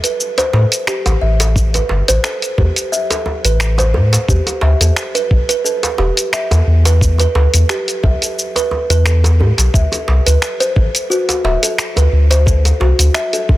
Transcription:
0.04 B4, closed hi-hat, shaker
0.20 shaker
0.38 C5, closed hi-hat, djembe slap, shaker
0.53 A2 A4, djembe slap
0.72 closed hi-hat, shaker
0.87 G4, finger snap, shaker
1.06 A1, closed hi-hat, djembe tone, shaker
1.21 A1 E5
1.40 A4, closed hi-hat, djembe slap, shaker
1.56 kick, shaker
1.74 B4, closed hi-hat, djembe tone, shaker
1.89 G1, djembe slap
2.08 A1 C5, closed hi-hat, djembe tone, shaker
2.24 A4, finger snap, shaker
2.42 closed hi-hat, shaker
2.58 E2 G4, kick, djembe bass
2.76 closed hi-hat, shaker
2.92 E5, shaker
3.10 A4, closed hi-hat, djembe slap, shaker
3.26 djembe tone
3.45 A1 B4, closed hi-hat, shaker
3.60 finger snap, shaker
3.78 C5, closed hi-hat, djembe tone, shaker
3.94 A2 A4, djembe bass
4.13 closed hi-hat, djembe slap, shaker
4.28 E2 G4, kick, shaker
4.46 closed hi-hat, djembe tone, shaker
4.61 D2 E5, djembe slap
4.80 E2 A4, closed hi-hat, djembe tone, shaker
4.96 finger snap, shaker
5.15 B4, closed hi-hat, shaker
5.31 B1, kick
5.49 B4, closed hi-hat, shaker
5.64 A4, shaker
5.83 closed hi-hat, djembe slap, shaker
5.98 E1 G4, djembe slap
6.17 closed hi-hat, shaker
6.33 E5, finger snap, shaker
6.51 E2 A4, closed hi-hat, djembe tone, shaker
6.67 E2
6.85 B4, closed hi-hat, djembe slap, shaker
7.01 kick, shaker
7.18 B4, closed hi-hat, djembe tone, shaker
7.35 D2 A4, djembe slap
7.54 E2, closed hi-hat, djembe tone, shaker
7.69 G4, finger snap, shaker
7.88 closed hi-hat, shaker
8.03 B1 E5, kick, djembe bass
8.22 A4, closed hi-hat, shaker
8.39 shaker
8.56 B4, closed hi-hat, djembe slap, shaker
8.71 djembe tone
8.90 E2 B4, closed hi-hat, shaker
9.06 A4, finger snap, shaker
9.24 E2, closed hi-hat, djembe tone, shaker
9.40 A2 G4, djembe bass
9.58 B1, closed hi-hat, djembe slap, shaker
9.74 D2 E5, kick, shaker
9.92 A4, closed hi-hat, djembe tone, shaker
10.08 C2, djembe slap
10.26 D2 B4, closed hi-hat, djembe tone, shaker
10.42 finger snap, shaker
10.60 C5, closed hi-hat, shaker
10.76 A1 A4, kick
10.95 closed hi-hat, shaker
11.10 F#4, shaker
11.29 closed hi-hat, djembe slap, shaker
11.44 D1 E5, djembe slap
11.63 A4, closed hi-hat, shaker
11.78 finger snap, shaker
11.96 D2 B4, closed hi-hat, djembe tone, shaker
12.13 D2
12.31 C5, closed hi-hat, djembe slap, shaker
12.46 A4, kick, shaker
12.65 closed hi-hat, djembe tone, shaker
12.80 C2 F#4, djembe slap
12.99 D2, closed hi-hat, djembe tone, shaker
13.14 E5, finger snap, shaker
13.33 A4, closed hi-hat, shaker
13.49 A1, kick, djembe bass

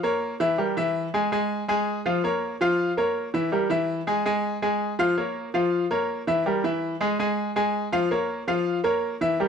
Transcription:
0.03 A#3 A#4 C#5
0.40 E3 E4 E5
0.58 G3 G4 A#4
0.77 E3 E4 E5
1.14 G#3 G#4 G#5
1.32 G#3 G#4 G#5
1.68 G#3 G#4 G#5
2.06 F3 F4 F5
2.24 A#3 A#4 C#5
2.61 F3 F4 F5
2.97 A#3 A#4 C#5
3.34 E3 E4 E5
3.52 G3 G4 A#4
3.70 E3 E4 E5
4.07 G#3 G#4 G#5
4.26 G#3 G#4 G#5
4.62 G#3 G#4 G#5
4.99 F3 F4 F5
5.18 A#3 A#4 C#5
5.54 F3 F4 F5
5.91 A#3 A#4 C#5
6.27 E3 E4 E5
6.46 G3 G4 A#4
6.64 E3 E4 E5
7.01 G#3 G#4 G#5
7.19 G#3 G#4 G#5
7.56 G#3 G#4 G#5
7.92 F3 F4 F5
8.11 A#3 A#4 C#5
8.48 F3 F4 F5
8.84 A#3 A#4 C#5
9.21 E3 E4 E5
9.40 G3 G4 A#4

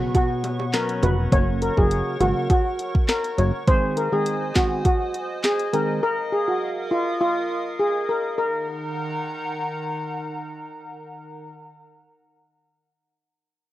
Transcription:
Already playing: B2 C#3 F#3 B3 F#4 B4 C#5 F#5 C#6
0.15 F#4, kick, closed hi-hat, high bongo
0.44 closed hi-hat, high bongo
0.60 high bongo
0.73 F#3 B3 C#4 A#4, snare, clap, closed hi-hat
0.89 closed hi-hat
1.03 F1 C#3 F#3 B3 F#4 B4, closed hi-hat, low bongo
1.32 F#1 C#3 F#3 A#3 F#4 A#4 C#5 C#6, kick, closed hi-hat
1.62 A#4, closed hi-hat
1.77 F#1 C#3 F#3 A#3 F#4 G#4, kick
1.91 closed hi-hat
2.20 G#1 C#3 F#3 A#3 F#4, closed hi-hat
2.50 F#4, kick, closed hi-hat
2.79 closed hi-hat
2.95 kick
3.08 A#4, snare, clap, closed hi-hat
3.24 closed hi-hat
3.38 F#1 C#3 F#3 A#3 F#4 C#5, closed hi-hat
3.67 D#3 G#3 C4 G#4 C5 D#5 G#5 D#6, kick, closed hi-hat
3.97 A#4, closed hi-hat
4.12 D#3 G#3 C4 G#4
4.26 closed hi-hat
4.55 D#3 G#3 C4 F#4 G#4, kick, snare, clap, closed hi-hat
4.85 F#4, kick, closed hi-hat
5.14 closed hi-hat
5.43 G#4, snare, clap, closed hi-hat
5.59 closed hi-hat
5.73 D#3 G#3 C4 G#4 A#4, closed hi-hat
6.03 A#4 F5 D#6
6.32 G#4
6.48 F#4
6.91 F4
7.21 F4
7.79 G#4
8.09 A#4
8.38 D#3 D#4 A#4 F#5 A#5

